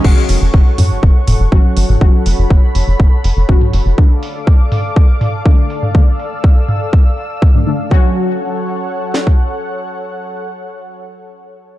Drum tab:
CC |x---------------|----------------|----------------|----------------|
HH |--o---o---o---o-|--o---o---o---o-|--o---o---o---o-|--o---o---o---o-|
SD |----------------|----------------|----------------|----------------|
T2 |------o---o----o|-------------o--|------o---o----o|------o------o--|
BD |o---o---o---o---|o---o---o---o---|o---o---o---o---|o---o---o---o---|

CC |----------------|----------------|
HH |----------------|----------------|
SD |----------o-----|----------------|
T2 |----------------|----------------|
BD |o----------o----|----------------|